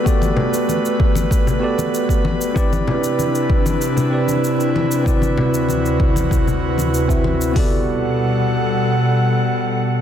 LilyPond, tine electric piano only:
\new Staff \with { instrumentName = "Tine electric piano" } { \time 4/4 \key g \major \tempo 4 = 96 <b fis' g' a' d''>2~ <b fis' g' a' d''>8 <b fis' g' a' d''>4. | <c' e' g' b' d''>2~ <c' e' g' b' d''>8 <c' e' g' b' d''>4. | <c' e' fis' b' d''>2~ <c' e' fis' b' d''>8 r8. <c' e' fis' b' e''>16 r8 | <b fis' g' a' d''>1 | }